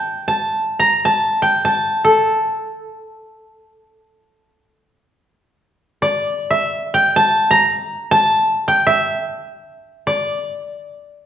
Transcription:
Already playing: G5 A5
0.28 A5
0.79 A#5
1.05 A5
1.42 G5
1.65 A5
2.04 A4
6.02 D5
6.50 E5
6.94 G5
7.16 A5
7.51 A#5
8.11 A5
8.68 G5
8.87 E5
10.07 D5

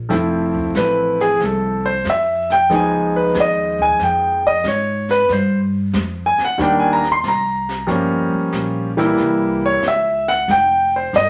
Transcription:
0.09 F1 F3 A3 C4 E4, brush sweep, kick, snare
0.55 kick
0.75 A1 B4, kick, snare, hi-hat pedal
1.20 G#4, snare
1.40 C2, brush sweep, kick, snare
1.45 A4
1.85 C5
2.04 F2, kick, snare, hi-hat pedal
2.10 E5
2.50 G5, snare
2.70 C#2 F3 G#3 B3 D#4, brush sweep, kick, snare
2.75 G#5
3.16 B4
3.34 D#2, kick, snare, hi-hat pedal
3.40 D#5
3.79 G#5, kick
3.99 F2 G5, brush sweep, kick, snare
4.47 D#5
4.64 G#2, kick, snare, hi-hat pedal
4.68 C#5
5.09 B4, snare
5.29 G2 C5, brush sweep, kick, snare
5.93 F2, kick, snare, hi-hat pedal
6.26 G#5
6.38 muted upright bass stroke, snare
6.45 F#5
6.58 D#2 D#3 G3 A#3 D4, brush sweep, kick, snare
6.62 G5
6.79 G#5
6.93 A#5
7.03 snare
7.12 C6
7.23 C2, kick, snare, hi-hat pedal
7.28 A#5
7.69 snare
7.87 G1 F3 G3 A#3 C#4, brush sweep, kick, snare
8.33 muted upright bass stroke
8.52 A#1, kick, snare, hi-hat pedal
8.97 E3 G3 A#3 E4, snare
9.17 C2, brush sweep, kick, snare
9.66 C#5
9.82 C#2, kick, snare, hi-hat pedal
9.88 E5
10.28 F#5, snare
10.48 F1 G5, brush sweep, kick, snare
10.96 C5
11.13 G1 D#5, kick, snare, hi-hat pedal

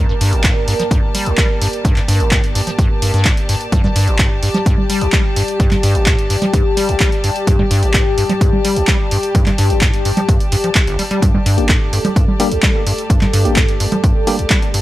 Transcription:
Already playing: G4 A#4 D5 A5
0.09 G2
0.21 G2, open hi-hat
0.33 G1, closed hi-hat
0.44 A#2, kick, clap, closed hi-hat
0.68 G2, open hi-hat
0.80 F3, closed hi-hat
0.91 G2, kick, closed hi-hat
1.15 G3, open hi-hat
1.26 G1, closed hi-hat
1.38 G3, kick, clap, closed hi-hat
1.62 G2, open hi-hat
1.73 closed hi-hat
1.85 G2, kick, closed hi-hat
1.96 G2, clap, closed hi-hat
2.08 G2, open hi-hat
2.20 G1, closed hi-hat
2.31 A#2, kick, clap, closed hi-hat
2.44 closed hi-hat
2.55 G2, open hi-hat
2.67 F3, closed hi-hat
2.79 G2, kick, closed hi-hat
3.02 G2, open hi-hat
3.14 G2, closed hi-hat
3.25 A2, kick, clap, closed hi-hat
3.37 closed hi-hat
3.49 G2, open hi-hat
3.61 closed hi-hat
3.72 G2 G4, kick, closed hi-hat, low conga
3.84 G2, low conga
3.96 G2, open hi-hat
4.08 G1, closed hi-hat
4.19 A#2, kick, clap, closed hi-hat
4.43 G2, open hi-hat
4.54 F3, closed hi-hat, low conga
4.66 G2, kick, closed hi-hat
4.78 low conga
4.90 G3, open hi-hat
5.01 G1, closed hi-hat
5.12 G3, kick, clap, closed hi-hat
5.36 G2, open hi-hat
5.48 closed hi-hat
5.60 G2, kick, closed hi-hat
5.71 G2, clap, closed hi-hat, low conga
5.83 G2, open hi-hat
5.95 G1, closed hi-hat
6.06 A#2, kick, clap, closed hi-hat
6.19 closed hi-hat
6.30 G2, open hi-hat
6.42 F3, closed hi-hat, low conga
6.54 G2, kick, closed hi-hat
6.77 G3, open hi-hat
6.89 G1, closed hi-hat
7.00 G3, kick, clap, closed hi-hat
7.12 closed hi-hat
7.24 G2, open hi-hat
7.36 closed hi-hat
7.47 G2, kick, closed hi-hat, low conga
7.59 G2, low conga
7.71 G2, open hi-hat
7.83 G1, closed hi-hat
7.94 A#2, kick, clap, closed hi-hat
8.18 G2, open hi-hat
8.29 F3, closed hi-hat, low conga
8.41 G2, kick, closed hi-hat
8.53 low conga
8.65 G3, open hi-hat
8.76 G1, closed hi-hat
8.87 G3, kick, clap, closed hi-hat
9.11 G2, open hi-hat
9.23 closed hi-hat
9.35 G2, kick, closed hi-hat, low conga
9.46 G2, clap, closed hi-hat, low conga
9.58 G2, open hi-hat
9.70 G1, closed hi-hat
9.81 A#2, kick, clap, closed hi-hat
9.94 closed hi-hat
10.05 G2, open hi-hat
10.17 F3, closed hi-hat, low conga
10.29 G2, kick, closed hi-hat
10.40 closed hi-hat
10.52 G2, open hi-hat
10.64 F3, closed hi-hat
10.75 F2, kick, clap, closed hi-hat
10.87 G1, closed hi-hat
10.99 G3, open hi-hat
11.11 G3, closed hi-hat
11.22 G2 A4, kick, closed hi-hat, low conga
11.34 G2, low conga
11.46 G2, open hi-hat
11.58 G1 A#3 D4 G4, closed hi-hat
11.69 A#2, kick, clap, closed hi-hat
11.93 G2, open hi-hat
12.05 F3, closed hi-hat, low conga
12.16 G2, kick, closed hi-hat
12.28 low conga
12.40 G3 A#3 D4 G4, open hi-hat
12.51 G1, closed hi-hat
12.63 G3, kick, clap, closed hi-hat
12.87 G2, open hi-hat
12.98 closed hi-hat
13.10 G2, kick, closed hi-hat
13.21 G2, clap, closed hi-hat, low conga
13.33 G2, open hi-hat
13.45 G1 A#3 D4 G4, closed hi-hat
13.56 A#2, kick, clap, closed hi-hat
13.69 closed hi-hat
13.80 G2, open hi-hat
13.92 F3, closed hi-hat, low conga
14.04 G2, kick, closed hi-hat
14.27 G3 A#3 D4 G4, open hi-hat
14.39 G1, closed hi-hat
14.50 G3, kick, clap, closed hi-hat
14.62 closed hi-hat
14.74 G2, open hi-hat

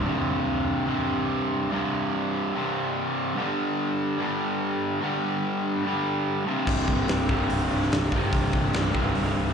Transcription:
0.03 C2 G2 C3
0.86 C2 G2 C3
1.70 C2 G2 C3
2.53 C2 G2 C3
3.35 G2 D3
3.39 G3
4.18 G2 D3 G3
5.01 G2 D3 G3
5.84 G2 D3 G3
6.45 C2 G2 C3
6.67 C1, kick, crash
6.79 snare
6.88 C1, kick
7.08 C1, snare, open hi-hat
7.29 C2 G2 C3, kick
7.50 C1, open hi-hat
7.71 C1
7.82 snare
7.91 C1, snare, open hi-hat
8.11 G1 C2 G2 C3, kick
8.33 C1, kick, open hi-hat
8.53 C1, kick
8.73 C1, snare, open hi-hat
8.93 C1 G2 C3, kick
8.97 C2
9.15 C1, open hi-hat
9.37 C1

